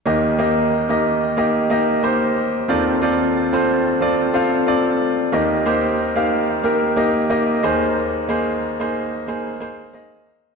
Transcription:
X:1
M:4/4
L:1/16
Q:"Swing 16ths" 1/4=91
K:Eb
V:1 name="Grand piano"
[B,EGe]2 [B,EGe]3 [B,EGe]3 [B,EGe]2 [B,EGe]2 [B,EGc]4 | [CF=Ad]2 [CFAd]3 [CFAc]3 [CFAd]2 [CFAf]2 [CFAd]4 | [B,EGe]2 [B,EGc]3 [B,EGf]3 [B,EGB]2 [B,EGe]2 [B,EGe]2 [B,EAc]2- | [B,EAc]2 [B,EAc]3 [B,EAc]3 [B,EAc]2 [B,EAc]2 [B,EAe]4 |]
V:2 name="Grand piano" clef=bass
[E,,E,]16 | [E,,E,]16 | [E,,E,]12- [E,,E,]2 [E,,E,]2- | [E,,E,]12- [E,,E,]2 z2 |]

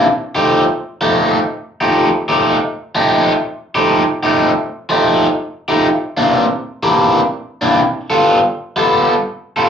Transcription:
X:1
M:4/4
L:1/8
Q:"Swing" 1/4=124
K:F
V:1 name="Overdriven electric guitar"
z [F,A,_EG] z2 [F,A,EG] z2 [F,A,EG] | z [F,A,_EG] z2 [F,A,EG] z2 [F,A,EG] | z [F,A,_EG] z2 [F,A,EG] z2 [F,A,EG] | z [C,E,B,D] z2 [C,E,B,D] z2 [C,E,B,D] |
z [G,=B,FA] z2 [G,B,FA] z2 [G,B,FA] |]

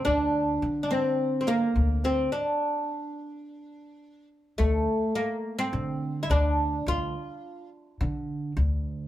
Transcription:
X:1
M:4/4
L:1/16
Q:1/4=106
K:none
V:1 name="Nylon-string guitar"
D6 C4 _B,4 C2 | z16 | z16 | z16 |]
V:2 name="Oud"
D4- D3/2 D/2 C3- C/2 C/2 _B,4 C2 | D12- D2 z2 | A,4 _B,3 C4- C/2 E/2 D4 | F6 z8 z2 |]
V:3 name="Upright bass" clef=bass
D,,4 D,8 D,,4 | z16 | D,,2 z6 D,4 D,,4 | D,,2 z6 D,4 D,,4 |]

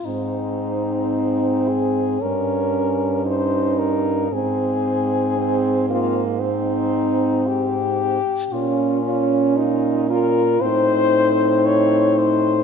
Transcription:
X:1
M:4/4
L:1/16
Q:1/4=57
K:Ab
V:1 name="French horn"
E6 A2 B4 c2 B2 | A6 F2 E4 G4 | F6 B2 c4 d2 c2 |]
V:2 name="French horn"
C8 D4 E4 | C4 C2 B,2 C6- C z | D2 D2 E2 F2 C8 |]
V:3 name="French horn"
C8 D8 | C8 C6- C z | D8 E8 |]
V:4 name="French horn" clef=bass
A,,8 G,,8 | A,,12- A,,3 z | B,,8 =A,,8 |]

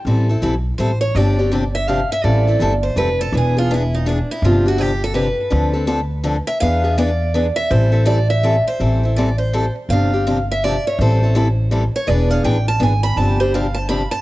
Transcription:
X:1
M:3/4
L:1/16
Q:"Swing" 1/4=164
K:Am
V:1 name="Steel-string acoustic guitar"
z8 c2 ^c2 | d6 e2 f2 e2 | d6 c2 B2 A2 | ^G2 F2 E2 ^D2 =D2 E2 |
F2 ^F2 G2 A2 B4- | B8 z2 e2 | f4 d6 e2 | c4 d2 e4 c2- |
c4 d2 c4 z2 | f6 e2 d2 ^c2 | c4 z6 ^c2 | d2 f2 g2 a2 ^g2 b2 |
a2 c2 f2 a2 b2 a2 |]
V:2 name="Steel-string acoustic guitar"
[E,G,CEA]2 [CEA]2 [E,G,CEA] z3 [E,G,CEA] z3 | [C,F,CDG]2 [CDG]2 [C,F,CDG] z3 [C,F,CDG] z3 | [E,G,CEA]2 [CEA]2 [E,G,CEA] z3 [E,G,CEA] z3 | [E,B,D^G]2 [B,DG]2 [E,B,DG] z3 [E,B,DG] z3 |
[C,F,CDG]2 [CDG]2 [C,F,CDG] z3 [C,F,CDG] z3 | [D,F,CDA]2 [CDA]2 [D,F,CDA] z3 [D,F,CDA] z3 | [E,B,D^G]2 [B,DG]2 [E,B,DG] z3 [E,B,DG] z3 | [E,G,CEA]2 [CEA]2 [E,G,CEA] z3 [E,G,CEA] z3 |
[E,G,CEA]2 [CEA]2 [E,G,CEA] z3 [E,G,CEA] z3 | [C,F,CDG]2 [CDG]2 [C,F,CDG] z3 [C,F,CDG] z3 | [E,G,CEA]2 [CEA]2 [E,G,CEA] z3 [E,G,CEA] z3 | [E,B,D^G]2 [B,DG]2 [E,B,DG] z3 [E,B,DG] z3 |
[C,F,CDG]2 [CDG]2 [C,F,CDG] z3 [C,F,CDG] z3 |]
V:3 name="Upright bass" clef=bass
A,,,4 B,,,4 A,,,4 | G,,,12 | A,,,4 G,,,4 F,,,4 | E,,,12 |
G,,,12 | D,,12 | E,,12 | A,,,12 |
A,,,12 | G,,,12 | A,,,12 | E,,,4 A,,,4 ^G,,,4 |
G,,,12 |]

